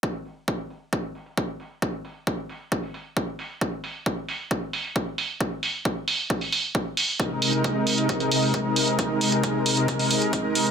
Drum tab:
HH |--o---o---oo--o-|--o---o--oo---o-|--o---o---oo--o-|--o---o--oo---o-|
BD |o---o---o---o---|o---o---o---o---|o---o---o---o---|o---o---o---o---|

HH |x-oxx-oxxxoox-ox|x-oxx-oxxooxx-ox|
BD |o---o---o---o---|o---o---o---o---|